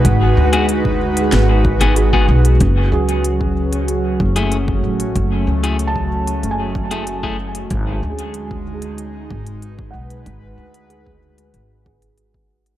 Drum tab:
HH |x--xx--xx--xx--x|x--xx--xx--xx--x|x--xx--xx--xx--x|x--xx--xx--xx--x|
SD |--------o-------|----------------|----------------|----------------|
T2 |-----o-----o-o--|----------------|----------------|----------------|
BD |o----o----o--o--|o----o----o--o--|o----o----o--o--|o----o----o--o--|

HH |x--xx--xx--xx--x|
SD |----------------|
T2 |----------------|
BD |o----o----o--o--|